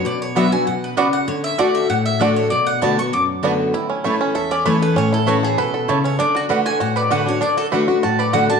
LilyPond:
<<
  \new Staff \with { instrumentName = "Mandolin" } { \time 4/4 \key a \mixolydian \tempo 4 = 196 d''8 cis''8 e''8 gis''8 fis''8 b'8 d''8 fis''8 | cis''8 e''8 d''8 e''8 fis''8 e''8 d''8 cis''8 | d''8 fis''8 a''8 cis'''8 d'''8 r4. | r2 e''8 d''8 cis''8 b'8 |
cis''8 a'8 fis'8 gis'8 a'4. cis''8 | d''8 fis'8 r8 gis''8 fis''8 d''8 b'8 cis''8 | d''8 a'8 r4 a''8 d''8 fis''8 a''8 | }
  \new Staff \with { instrumentName = "Mandolin" } { \time 4/4 \key a \mixolydian r4 <b fis' d'' fis''>8 r4. <b fis' d'' fis''>8 r8 | r4 <a fis' d'' fis''>8 r4. <a fis' d'' fis''>8 r8 | r4 <b fis' d'' a''>8 r4. <b fis' d'' a''>8 r8 | r4 <a e' cis'' a''>8 r4. <a e' cis'' a''>8 r8 |
r4 <a e' cis'' a''>8 r4. <a e' cis'' a''>8 r8 | r4 <a fis' d'' fis''>8 r4. <a fis' d'' fis''>8 r8 | r4 <a fis' d'' fis''>8 r4. <a fis' d'' fis''>8 r8 | }
  \new Staff \with { instrumentName = "Five-string banjo" } { \time 4/4 \key a \mixolydian r4 <b fis'>8 r4. <b fis'>8 r8 | r4 <d' fis'>8 r4. <d' fis'>8 r8 | r4 <b fis'>8 r4. <b fis'>8 r8 | e'8 cis'8 a'8 cis'8 a'8 cis'8 b'8 a'8 |
cis'8 e'8 b'8 a'8 b'8 a'8 e'8 cis'8 | d'8 fis'8 b'8 fis'8 fis'8 b'8 fis'8 d'8 | d'8 fis'8 b'8 fis'8 fis'8 b'8 fis'8 d'8 | }
  \new Staff \with { instrumentName = "Steel-string acoustic guitar" } { \time 4/4 \key a \mixolydian << { r4 <fis b d' fis'>8 <d' fis'>8 r2 | r4 <d a d' fis'>4 r4 <d a d' fis'>4 | r4 <d a b fis'>8 <b fis'>8 r4 <d a b fis'>4 | r4 <e a cis' e'>4 r4 <e a cis' e'>4 |
r4 <e a cis' e'>4 r2 | r4 <d a d' fis'>4 r4 <d a d' fis'>8 <d' fis'>8 | r4 <d a d' fis'>8 <d' fis'>8 r4 <d a d' fis'>8 <d' fis'>8 | } \\ { b,2 b,4 cis4 | d2 a,2 | b,2 fis,2 | a,2 e,2 |
a,2 b,4 cis4 | d2 a,2 | d2 a,2 | } >> }
>>